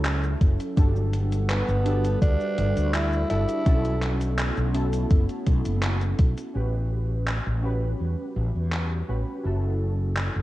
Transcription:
Already playing: C#2 F#3 C#4 E4 F#4 A4
0.05 clap, closed hi-hat, cabasa
0.24 cabasa
0.41 F#1, kick, closed hi-hat
0.60 closed hi-hat, cabasa
0.76 G1 G3 D4 F#4 G4 A4 B4 F#5, kick, closed hi-hat, cabasa
0.96 cabasa
1.13 closed hi-hat
1.32 closed hi-hat, cabasa
1.49 B3, clap, closed hi-hat, cabasa
1.68 G1, cabasa
1.84 D4 F#4 G4 A4, closed hi-hat
2.04 closed hi-hat, cabasa
2.22 D2 D4, kick, closed hi-hat, cabasa
2.40 cabasa
2.58 G1, closed hi-hat
2.77 D2, closed hi-hat, cabasa
2.94 E4, clap, closed hi-hat, cabasa
3.13 cabasa
3.30 G1 D4 E4 F#4 G4 A4, closed hi-hat
3.49 closed hi-hat, cabasa
3.65 B1 A3 B3 C#4 E4 F#4 A4, kick, closed hi-hat, cabasa
3.85 closed hi-hat, cabasa
4.02 clap, closed hi-hat
4.21 closed hi-hat, cabasa
4.38 clap, closed hi-hat, cabasa
4.57 B1, cabasa
4.73 C#4 E4 F#4 A4, closed hi-hat
4.93 closed hi-hat, cabasa
5.11 F#1, kick, closed hi-hat, cabasa
5.29 closed hi-hat, cabasa
5.47 B1, kick, closed hi-hat
5.65 F#1, closed hi-hat, cabasa
5.83 clap, closed hi-hat, cabasa
6.01 closed hi-hat, cabasa
6.19 B1, kick, closed hi-hat
6.38 closed hi-hat, cabasa
6.54 A1 G3 A3 C#4 F#4 G4 B4
7.27 clap
7.47 A1
7.62 C#4 F#4 G4 B4
8.00 E2
8.36 A1
8.55 E2
8.72 clap
9.08 A1 C#4 F#4 G4 B4
9.44 F#1 F#3 C#4 E4 F#4 A4
10.17 clap
10.36 F#1

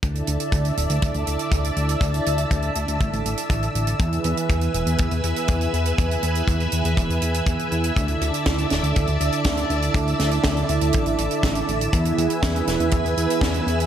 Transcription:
0.03 D2 D3 D4 E4 A4 D5 E5 A5 E6, kick, closed hi-hat
0.15 closed hi-hat
0.27 D2, closed hi-hat
0.40 closed hi-hat
0.52 D2, kick, closed hi-hat
0.65 closed hi-hat
0.77 D1 D3 D4 E4 A4 E5, closed hi-hat
0.90 D2, closed hi-hat
1.02 D2, kick, closed hi-hat
1.14 D2, closed hi-hat
1.27 D2 D3 D4 E4 A4 E5, closed hi-hat
1.39 closed hi-hat
1.52 D2, kick, closed hi-hat
1.64 closed hi-hat
1.77 D2, closed hi-hat
1.89 closed hi-hat
2.01 D2 D3 D4 E4 A4 E5, kick, closed hi-hat
2.14 closed hi-hat
2.26 D2, closed hi-hat
2.38 closed hi-hat
2.51 D2, kick, closed hi-hat
2.62 closed hi-hat
2.75 D2 D3 D4 E4 A4 E5, closed hi-hat
2.88 D2, closed hi-hat
3.00 A1, kick, closed hi-hat
3.13 A1, closed hi-hat
3.25 A1, closed hi-hat
3.37 closed hi-hat
3.50 A1, kick, closed hi-hat
3.63 closed hi-hat
3.75 A1, closed hi-hat
3.87 closed hi-hat
4.00 E2 E3 B3 E4 G#4 B4 E5 G#5, kick, closed hi-hat
4.13 closed hi-hat
4.24 E2, closed hi-hat
4.37 closed hi-hat
4.50 E2, kick, closed hi-hat
4.61 closed hi-hat
4.74 E1 E3 B3 E4 G#4 E5, closed hi-hat
4.87 E2, closed hi-hat
4.98 E2, kick, closed hi-hat
5.11 E2, closed hi-hat
5.24 E2 E3 B3 E4 G#4 E5, closed hi-hat
5.36 closed hi-hat
5.48 E2, kick, closed hi-hat
5.61 closed hi-hat
5.73 E2, closed hi-hat
5.86 closed hi-hat
5.98 E2 E3 B3 E4 G#4 E5, kick, closed hi-hat
6.11 closed hi-hat
6.23 E2, closed hi-hat
6.35 closed hi-hat
6.48 E2, kick, closed hi-hat
6.60 closed hi-hat
6.72 E2 E3 B3 E4 G#4 E5, closed hi-hat
6.85 E2, closed hi-hat
6.97 E1, kick, closed hi-hat
7.10 E2, closed hi-hat
7.22 E2, closed hi-hat
7.34 closed hi-hat
7.47 E2, kick, closed hi-hat
7.59 closed hi-hat
7.72 E2, closed hi-hat
7.84 closed hi-hat
7.96 D2 D3 D4 E4 A4 D5 E5 A5 E6, kick, closed hi-hat
8.08 closed hi-hat
8.21 D2, closed hi-hat
8.34 closed hi-hat
8.46 D2, kick, snare, closed hi-hat
8.58 closed hi-hat
8.70 D1 D3 D4 E4 A4 E5, snare, closed hi-hat
8.83 D2, closed hi-hat
8.96 D2, kick, closed hi-hat
9.07 D2, closed hi-hat
9.20 D2 D3 D4 E4 A4 E5, closed hi-hat
9.32 closed hi-hat
9.44 D2, kick, snare, closed hi-hat
9.57 closed hi-hat
9.70 D2, closed hi-hat
9.82 closed hi-hat
9.94 D2 D3 D4 E4 A4 E5, kick, closed hi-hat
10.08 closed hi-hat
10.20 D2, snare, closed hi-hat
10.31 closed hi-hat
10.44 D2, kick, snare, closed hi-hat
10.57 closed hi-hat
10.69 D2 D3 D4 E4 A4 E5, closed hi-hat
10.81 D2, closed hi-hat
10.93 A1, kick, closed hi-hat
11.06 A1, closed hi-hat
11.18 A1, closed hi-hat
11.31 closed hi-hat
11.43 A1, kick, snare, closed hi-hat
11.55 closed hi-hat
11.68 A1, closed hi-hat
11.81 closed hi-hat
11.93 E2 E3 B3 E4 G#4 B4 E5 G#5, kick, closed hi-hat
12.05 closed hi-hat
12.18 E2, closed hi-hat
12.30 closed hi-hat
12.43 E2, kick, snare, closed hi-hat
12.56 closed hi-hat
12.67 E1 E3 B3 E4 G#4 E5, snare, closed hi-hat
12.80 E2, closed hi-hat
12.91 E2, kick, closed hi-hat
13.05 E2, closed hi-hat
13.17 E2 E3 B3 E4 G#4 E5, closed hi-hat
13.30 closed hi-hat
13.41 E2, kick, snare, closed hi-hat
13.54 closed hi-hat
13.67 E2, closed hi-hat
13.80 closed hi-hat

